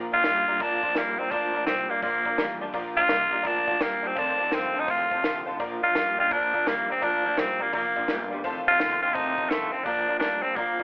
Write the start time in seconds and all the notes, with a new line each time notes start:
Already playing: A#2 F3 A#3 D4
0.10 A#2 F3 A#3 D4 F4 D5 F5 A#5
0.24 G2 A#2 F3 G3 A#3 D4 F4 D5 F5 C6, snare, open hi-hat
0.46 A#2 G3 A#3 D4 F4 D5 F5 A#5
0.59 F2 A#2 F3 A#3 D4 F4 D5 F5 A#5, kick, open hi-hat
0.83 F3 A#3 D4 F4 D5 F5 C6, kick
0.95 D#2 A#2 F3 G3 A#3 D4 F4 D5 F5 C6, snare, open hi-hat
1.17 A#2 G3 A#3 C4 D4 F4 D5 F5 A#5
1.30 D2 A#2 F3 A#3 D4 F4 D5 F5 A#5, kick, open hi-hat
1.54 A#2 F3 A#3 D4 F4 D5 F5 A#5
1.66 C2 A#2 F3 G3 A#3 C4 D4 F4 D5 F5 C6, snare, open hi-hat
1.90 A#2 G3 A#3 D4 F4 D5 F5 A#5, muted upright bass stroke
2.02 A#1 A#2 F3 A#3 D4 F4 D5 F5 C6, kick, open hi-hat
2.25 A#2 F3 A#3 D4 F4 D5 F5 A#5, kick
2.38 A1 A#2 F3 G3 A#3 D4 F4 D5 F5 A#5, snare, open hi-hat
2.60 A#2 G3 A#3 D4 F4 D5 F5 A5
2.73 A#1 A#2 F3 A#3 D4 F4 D5 F5 A#5, kick, open hi-hat
2.96 A#2 F3 A#3 D4 F4 D5 F5 A#5
3.08 C2 A#2 F3 G3 A#3 D4 F4 D5 F5 A#5, snare, open hi-hat
3.31 A#2 G3 A#3 D4 F4 D5 F5 A#5, muted upright bass stroke
3.43 D2 A#2 F3 A#3 D4 F4 D5 F5 A#5, kick, open hi-hat
3.47 D4
3.67 A#2 F3 A#3 D4 F4 D5 F5 A5, kick
3.80 D#2 A#2 F3 G3 A#3 D4 F4 D5 F5 G5, snare, open hi-hat
4.03 A#2 G3 A#3 D4 F4 D5 F5 A5
4.07 C4
4.15 F2 C3 D#3 A3 D4 D#4 F4 C5 F5 A5, kick, open hi-hat
4.38 F2 C3 A3 D#4 F4 C5 F5 A5, muted upright bass stroke
4.42 D#3
4.51 F2 G2 C3 D3 D#3 A3 C4 D#4 F4 C5 F5 C6, snare, open hi-hat
4.74 F2 D3 D#3 A3 D#4 F4 C5 F5 A5
4.80 D#4
4.87 F2 A2 C3 D#3 A3 D#4 F4 C5 F5 C6, kick, open hi-hat
4.91 F4
5.11 F2 C3 D#3 A3 D#4 F4 C5 F5 A5, kick
5.24 F2 C3 D3 D#3 A3 D#4 F4 C5 F5 A5, snare, open hi-hat
5.46 F2 D3 D#3 A3 D#4 F4 C5 F5 A5
5.59 A#2 F3 A#3 D4 F4 D5 F5 A#5, kick, open hi-hat
5.82 A#2 F3 A#3 D4 F4 D5 F5 A#5, muted upright bass stroke
5.95 G2 A#2 F3 G3 A#3 D4 F4 D5 F5 A#5, snare, open hi-hat
6.18 A#2 G3 A#3 D4 F4 D5 F5 G5
6.30 F2 A#2 F3 A#3 D4 F4 D5 F5 A#5, kick, open hi-hat
6.54 A#2 F3 A#3 D4 F4 D5 F5 A#5, kick
6.67 D#2 A#2 F3 G3 A#3 D4 F4 D5 F5 A#5, snare, open hi-hat
6.90 A#2 G3 A#3 C4 D4 F4 D5 F5 A#5
7.02 D2 A#2 F3 A#3 D4 F4 D5 F5 A#5, kick, open hi-hat
7.24 A#2 F3 A#3 D4 F4 D5 F5 A#5
7.36 A#1 A#2 F3 G3 A#3 C4 D4 F4 D5 F5 A#5, snare, open hi-hat
7.59 A#2 G3 A#3 D4 F4 D5 F5 A#5
7.73 F1 A#2 F3 A#3 D4 F4 D5 F5 A#5, kick, open hi-hat
7.96 A#2 F3 A#3 D4 F4 D5 F5 C6, kick
8.08 G1 A#2 F3 G3 A#3 D4 F4 D5 F5 A#5, snare, open hi-hat
8.31 A#2 G3 A#3 D4 F4 D5 F5 C6
8.44 A1 F2 C3 D#3 A3 D#4 F4 C5 F5 A5, kick, open hi-hat
8.66 F2 C3 D#3 A3 D#4 F4 C5 F5 A5
8.79 G1 F2 C3 D3 D#3 A3 D#4 F4 C5 C6, snare, open hi-hat
9.02 F2 D3 D#3 A3 D#4 F4 C5 F5 G5
9.14 A1 F2 C3 D#3 A3 D#4 F4 C5 F5 A5, kick, open hi-hat
9.37 F2 C3 D#3 A3 D#4 F4 C5 F5 A5, kick
9.50 C2 F2 C3 D3 D#3 A3 D#4 F4 C5 F5 A5, snare, open hi-hat
9.72 F2 D3 D#3 A3 C4 D#4 F4 C5 F5 A5, muted upright bass stroke
9.84 A#1 A#2 F3 A#3 D4 F4 D5 F5 A#5, kick, open hi-hat
10.07 A#2 F3 A#3 D4 F4 D5 F5 A#5, muted upright bass stroke
10.19 D2 A#2 F3 G3 A#3 D4 F4 D5 F5 A#5, snare, open hi-hat
10.43 A#2 G3 A#3 C4 D4 F4 D5 F5 A5
10.56 F2 A#2 F3 A#3 D4 F4 D5 F5 A#5, kick, open hi-hat
10.79 A#2 F3 F4 D5 F5 A#5, kick